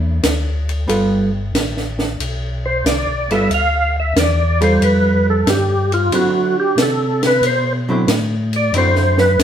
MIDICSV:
0, 0, Header, 1, 5, 480
1, 0, Start_track
1, 0, Tempo, 654664
1, 651, Time_signature, 4, 2, 24, 8
1, 6916, End_track
2, 0, Start_track
2, 0, Title_t, "Tonewheel organ"
2, 0, Program_c, 0, 16
2, 1947, Note_on_c, 0, 72, 98
2, 2089, Note_off_c, 0, 72, 0
2, 2103, Note_on_c, 0, 74, 82
2, 2419, Note_off_c, 0, 74, 0
2, 2433, Note_on_c, 0, 76, 96
2, 2572, Note_off_c, 0, 76, 0
2, 2597, Note_on_c, 0, 77, 114
2, 2906, Note_off_c, 0, 77, 0
2, 2930, Note_on_c, 0, 76, 80
2, 3061, Note_off_c, 0, 76, 0
2, 3074, Note_on_c, 0, 74, 92
2, 3384, Note_off_c, 0, 74, 0
2, 3399, Note_on_c, 0, 72, 92
2, 3535, Note_off_c, 0, 72, 0
2, 3548, Note_on_c, 0, 71, 73
2, 3861, Note_off_c, 0, 71, 0
2, 3886, Note_on_c, 0, 69, 91
2, 4019, Note_off_c, 0, 69, 0
2, 4030, Note_on_c, 0, 67, 74
2, 4342, Note_off_c, 0, 67, 0
2, 4353, Note_on_c, 0, 65, 76
2, 4492, Note_off_c, 0, 65, 0
2, 4509, Note_on_c, 0, 66, 86
2, 4821, Note_off_c, 0, 66, 0
2, 4837, Note_on_c, 0, 67, 86
2, 4974, Note_off_c, 0, 67, 0
2, 5001, Note_on_c, 0, 69, 81
2, 5307, Note_off_c, 0, 69, 0
2, 5328, Note_on_c, 0, 71, 85
2, 5459, Note_off_c, 0, 71, 0
2, 5475, Note_on_c, 0, 72, 93
2, 5666, Note_off_c, 0, 72, 0
2, 6277, Note_on_c, 0, 74, 105
2, 6413, Note_off_c, 0, 74, 0
2, 6436, Note_on_c, 0, 72, 96
2, 6745, Note_off_c, 0, 72, 0
2, 6745, Note_on_c, 0, 71, 99
2, 6887, Note_off_c, 0, 71, 0
2, 6916, End_track
3, 0, Start_track
3, 0, Title_t, "Hollow-body jazz guitar"
3, 0, Program_c, 1, 26
3, 0, Note_on_c, 1, 58, 66
3, 0, Note_on_c, 1, 62, 79
3, 0, Note_on_c, 1, 64, 72
3, 141, Note_off_c, 1, 58, 0
3, 141, Note_off_c, 1, 62, 0
3, 145, Note_off_c, 1, 64, 0
3, 641, Note_on_c, 1, 55, 60
3, 644, Note_on_c, 1, 59, 66
3, 648, Note_on_c, 1, 65, 68
3, 651, Note_on_c, 1, 69, 62
3, 944, Note_off_c, 1, 55, 0
3, 946, Note_off_c, 1, 59, 0
3, 948, Note_off_c, 1, 65, 0
3, 949, Note_off_c, 1, 69, 0
3, 2427, Note_on_c, 1, 55, 59
3, 2428, Note_on_c, 1, 59, 64
3, 2432, Note_on_c, 1, 69, 71
3, 2433, Note_on_c, 1, 65, 73
3, 2558, Note_off_c, 1, 55, 0
3, 2559, Note_off_c, 1, 59, 0
3, 2561, Note_off_c, 1, 69, 0
3, 2562, Note_off_c, 1, 65, 0
3, 3378, Note_on_c, 1, 55, 67
3, 3384, Note_on_c, 1, 69, 75
3, 3386, Note_on_c, 1, 65, 70
3, 3979, Note_off_c, 1, 55, 0
3, 3982, Note_off_c, 1, 69, 0
3, 3983, Note_off_c, 1, 65, 0
3, 4492, Note_on_c, 1, 54, 50
3, 4493, Note_on_c, 1, 50, 59
3, 4495, Note_on_c, 1, 60, 54
3, 4500, Note_on_c, 1, 64, 58
3, 4789, Note_off_c, 1, 54, 0
3, 4790, Note_off_c, 1, 50, 0
3, 4791, Note_off_c, 1, 60, 0
3, 4793, Note_off_c, 1, 64, 0
3, 5781, Note_on_c, 1, 50, 67
3, 5782, Note_on_c, 1, 54, 68
3, 5790, Note_on_c, 1, 64, 67
3, 5791, Note_on_c, 1, 60, 61
3, 5915, Note_off_c, 1, 50, 0
3, 5916, Note_off_c, 1, 54, 0
3, 5919, Note_off_c, 1, 64, 0
3, 5920, Note_off_c, 1, 60, 0
3, 6408, Note_on_c, 1, 50, 57
3, 6414, Note_on_c, 1, 54, 63
3, 6414, Note_on_c, 1, 60, 56
3, 6415, Note_on_c, 1, 64, 64
3, 6916, Note_off_c, 1, 50, 0
3, 6916, Note_off_c, 1, 54, 0
3, 6916, Note_off_c, 1, 60, 0
3, 6916, Note_off_c, 1, 64, 0
3, 6916, End_track
4, 0, Start_track
4, 0, Title_t, "Tonewheel organ"
4, 0, Program_c, 2, 16
4, 0, Note_on_c, 2, 40, 86
4, 152, Note_off_c, 2, 40, 0
4, 170, Note_on_c, 2, 38, 87
4, 636, Note_off_c, 2, 38, 0
4, 649, Note_on_c, 2, 31, 88
4, 1116, Note_off_c, 2, 31, 0
4, 1124, Note_on_c, 2, 33, 88
4, 1593, Note_off_c, 2, 33, 0
4, 1612, Note_on_c, 2, 35, 87
4, 2077, Note_off_c, 2, 35, 0
4, 2086, Note_on_c, 2, 36, 87
4, 2244, Note_off_c, 2, 36, 0
4, 2253, Note_on_c, 2, 35, 57
4, 2408, Note_on_c, 2, 31, 64
4, 2412, Note_off_c, 2, 35, 0
4, 2558, Note_off_c, 2, 31, 0
4, 2563, Note_on_c, 2, 38, 74
4, 3032, Note_off_c, 2, 38, 0
4, 3044, Note_on_c, 2, 40, 86
4, 3513, Note_off_c, 2, 40, 0
4, 3525, Note_on_c, 2, 41, 83
4, 3993, Note_off_c, 2, 41, 0
4, 4006, Note_on_c, 2, 43, 83
4, 4474, Note_off_c, 2, 43, 0
4, 4483, Note_on_c, 2, 50, 88
4, 4952, Note_off_c, 2, 50, 0
4, 4961, Note_on_c, 2, 48, 82
4, 5431, Note_off_c, 2, 48, 0
4, 5436, Note_on_c, 2, 47, 86
4, 5908, Note_off_c, 2, 47, 0
4, 5919, Note_on_c, 2, 45, 94
4, 6390, Note_off_c, 2, 45, 0
4, 6401, Note_on_c, 2, 42, 93
4, 6871, Note_off_c, 2, 42, 0
4, 6878, Note_on_c, 2, 38, 86
4, 6916, Note_off_c, 2, 38, 0
4, 6916, End_track
5, 0, Start_track
5, 0, Title_t, "Drums"
5, 171, Note_on_c, 9, 44, 59
5, 171, Note_on_c, 9, 51, 68
5, 172, Note_on_c, 9, 38, 65
5, 245, Note_off_c, 9, 38, 0
5, 245, Note_off_c, 9, 44, 0
5, 245, Note_off_c, 9, 51, 0
5, 505, Note_on_c, 9, 51, 44
5, 578, Note_off_c, 9, 51, 0
5, 655, Note_on_c, 9, 51, 65
5, 728, Note_off_c, 9, 51, 0
5, 1135, Note_on_c, 9, 38, 61
5, 1135, Note_on_c, 9, 44, 60
5, 1135, Note_on_c, 9, 51, 60
5, 1208, Note_off_c, 9, 44, 0
5, 1208, Note_off_c, 9, 51, 0
5, 1209, Note_off_c, 9, 38, 0
5, 1298, Note_on_c, 9, 38, 30
5, 1371, Note_off_c, 9, 38, 0
5, 1457, Note_on_c, 9, 38, 46
5, 1531, Note_off_c, 9, 38, 0
5, 1614, Note_on_c, 9, 51, 64
5, 1688, Note_off_c, 9, 51, 0
5, 2096, Note_on_c, 9, 44, 55
5, 2096, Note_on_c, 9, 51, 54
5, 2097, Note_on_c, 9, 38, 57
5, 2169, Note_off_c, 9, 44, 0
5, 2169, Note_off_c, 9, 51, 0
5, 2170, Note_off_c, 9, 38, 0
5, 2423, Note_on_c, 9, 51, 43
5, 2497, Note_off_c, 9, 51, 0
5, 2572, Note_on_c, 9, 51, 57
5, 2645, Note_off_c, 9, 51, 0
5, 3053, Note_on_c, 9, 38, 69
5, 3053, Note_on_c, 9, 44, 58
5, 3053, Note_on_c, 9, 51, 62
5, 3126, Note_off_c, 9, 44, 0
5, 3126, Note_off_c, 9, 51, 0
5, 3127, Note_off_c, 9, 38, 0
5, 3383, Note_on_c, 9, 51, 51
5, 3457, Note_off_c, 9, 51, 0
5, 3533, Note_on_c, 9, 51, 60
5, 3606, Note_off_c, 9, 51, 0
5, 4010, Note_on_c, 9, 44, 56
5, 4010, Note_on_c, 9, 51, 62
5, 4011, Note_on_c, 9, 38, 64
5, 4084, Note_off_c, 9, 44, 0
5, 4084, Note_off_c, 9, 51, 0
5, 4085, Note_off_c, 9, 38, 0
5, 4340, Note_on_c, 9, 51, 46
5, 4414, Note_off_c, 9, 51, 0
5, 4488, Note_on_c, 9, 51, 64
5, 4562, Note_off_c, 9, 51, 0
5, 4969, Note_on_c, 9, 38, 65
5, 4969, Note_on_c, 9, 44, 47
5, 4969, Note_on_c, 9, 51, 63
5, 5042, Note_off_c, 9, 44, 0
5, 5042, Note_off_c, 9, 51, 0
5, 5043, Note_off_c, 9, 38, 0
5, 5298, Note_on_c, 9, 51, 52
5, 5299, Note_on_c, 9, 38, 54
5, 5372, Note_off_c, 9, 38, 0
5, 5372, Note_off_c, 9, 51, 0
5, 5446, Note_on_c, 9, 51, 65
5, 5519, Note_off_c, 9, 51, 0
5, 5924, Note_on_c, 9, 44, 63
5, 5924, Note_on_c, 9, 51, 63
5, 5925, Note_on_c, 9, 38, 66
5, 5997, Note_off_c, 9, 44, 0
5, 5997, Note_off_c, 9, 51, 0
5, 5998, Note_off_c, 9, 38, 0
5, 6252, Note_on_c, 9, 51, 45
5, 6326, Note_off_c, 9, 51, 0
5, 6405, Note_on_c, 9, 51, 65
5, 6479, Note_off_c, 9, 51, 0
5, 6565, Note_on_c, 9, 38, 27
5, 6639, Note_off_c, 9, 38, 0
5, 6729, Note_on_c, 9, 38, 47
5, 6803, Note_off_c, 9, 38, 0
5, 6887, Note_on_c, 9, 44, 62
5, 6887, Note_on_c, 9, 51, 70
5, 6888, Note_on_c, 9, 38, 64
5, 6916, Note_off_c, 9, 38, 0
5, 6916, Note_off_c, 9, 44, 0
5, 6916, Note_off_c, 9, 51, 0
5, 6916, End_track
0, 0, End_of_file